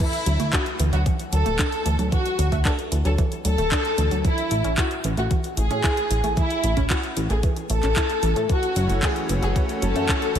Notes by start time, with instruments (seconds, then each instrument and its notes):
0.00 violin section E4, kick, closed hi-hat, crash
0.13 closed hi-hat
0.26 analog synth bass D2, synth arpeggio sound F#3, closed hi-hat
0.40 analog synth bass D2, synth arpeggio sound A3, closed hi-hat
0.53 synth arpeggio sound D4, violin section F#4, kick, clap, closed hi-hat
0.66 closed hi-hat
0.79 analog synth bass D2, synth arpeggio sound E3, closed hi-hat
0.93 analog synth bass D2, synth arpeggio sound F#3, violin section F#4, closed hi-hat
1.06 synth arpeggio sound E3, kick, closed hi-hat
1.19 closed hi-hat
1.32 analog synth bass D2, synth arpeggio sound F#3, violin section A4, closed hi-hat
1.46 analog synth bass D1, synth arpeggio sound A3, closed hi-hat
1.59 synth arpeggio sound D4, kick, clap, closed hi-hat
1.72 closed hi-hat
1.86 analog synth bass D2, synth arpeggio sound E3, closed hi-hat
1.99 analog synth bass D2, synth arpeggio sound F#3, closed hi-hat
2.12 synth arpeggio sound E3, violin section F#4, kick, closed hi-hat
2.26 closed hi-hat
2.39 analog synth bass D2, synth arpeggio sound F#3, closed hi-hat
2.52 analog synth bass D2, synth arpeggio sound A3, kick, closed hi-hat
2.65 synth arpeggio sound D4, violin section A4, kick, clap, closed hi-hat
2.79 closed hi-hat
2.92 analog synth bass D2, synth arpeggio sound E3, closed hi-hat
3.05 analog synth bass D2, synth arpeggio sound F#3, violin section A4, closed hi-hat
3.18 synth arpeggio sound E3, kick, closed hi-hat
3.32 closed hi-hat
3.45 analog synth bass D2, synth arpeggio sound F#3, violin section A4, closed hi-hat
3.58 analog synth bass D1, synth arpeggio sound A3, closed hi-hat
3.71 synth arpeggio sound D4, kick, clap, closed hi-hat
3.85 closed hi-hat
3.98 analog synth bass D2, synth arpeggio sound E3, closed hi-hat
4.11 analog synth bass D2, synth arpeggio sound F#3, closed hi-hat
4.25 synth arpeggio sound E3, violin section E4, kick, closed hi-hat
4.38 closed hi-hat
4.51 analog synth bass A1, synth arpeggio sound A3, closed hi-hat
4.64 analog synth bass A1, synth arpeggio sound C#4, closed hi-hat
4.78 synth arpeggio sound E4, violin section F#4, kick, clap, closed hi-hat
4.91 closed hi-hat
5.04 analog synth bass A1, synth arpeggio sound E3, closed hi-hat
5.17 analog synth bass A1, synth arpeggio sound A3, violin section F#4, closed hi-hat
5.31 synth arpeggio sound E3, kick, closed hi-hat
5.44 closed hi-hat
5.57 analog synth bass A1, synth arpeggio sound A3, violin section G#4, closed hi-hat
5.71 analog synth bass A2, synth arpeggio sound C#4, closed hi-hat
5.84 synth arpeggio sound E4, kick, clap, closed hi-hat
5.97 closed hi-hat
6.10 analog synth bass A1, synth arpeggio sound E3, closed hi-hat
6.24 analog synth bass A1, synth arpeggio sound A3, closed hi-hat
6.37 synth arpeggio sound E3, violin section E4, kick, closed hi-hat
6.50 closed hi-hat
6.64 analog synth bass A1, synth arpeggio sound A3, closed hi-hat
6.77 analog synth bass A1, synth arpeggio sound C#4, kick, closed hi-hat
6.90 synth arpeggio sound E4, violin section F#4, kick, clap, closed hi-hat
7.03 closed hi-hat
7.17 analog synth bass A1, synth arpeggio sound E3, closed hi-hat
7.30 analog synth bass A1, synth arpeggio sound A3, violin section G#4, closed hi-hat
7.43 synth arpeggio sound E3, kick, closed hi-hat
7.56 closed hi-hat
7.70 analog synth bass A1, synth arpeggio sound A3, violin section A4, closed hi-hat
7.83 analog synth bass A1, synth arpeggio sound C#4, clap, closed hi-hat
7.96 synth arpeggio sound E4, kick, clap, closed hi-hat
8.10 closed hi-hat
8.23 analog synth bass A1, synth arpeggio sound E3, closed hi-hat
8.36 analog synth bass A2, synth arpeggio sound A3, closed hi-hat
8.49 analog synth pad E3 A3 C#4 F#4, synth arpeggio sound E3, violin section F#4, kick, closed hi-hat
8.63 closed hi-hat
8.76 analog synth bass F#1, synth arpeggio sound F#3, closed hi-hat
8.89 analog synth bass F#1, synth arpeggio sound A3, closed hi-hat
9.03 synth arpeggio sound C#4, violin section G#4, kick, clap, closed hi-hat
9.16 closed hi-hat
9.29 analog synth bass F#1, synth arpeggio sound E3, closed hi-hat
9.42 analog synth bass F#1, synth arpeggio sound F#3, violin section G#4, closed hi-hat
9.56 synth arpeggio sound E3, kick, closed hi-hat
9.69 closed hi-hat
9.82 analog synth bass F#1, synth arpeggio sound F#3, violin section A4, closed hi-hat
9.96 analog synth bass F#2, synth arpeggio sound A3, closed hi-hat
10.09 synth arpeggio sound C#4, kick, clap, closed hi-hat
10.22 closed hi-hat
10.35 analog synth bass F#1, synth arpeggio sound E3, closed hi-hat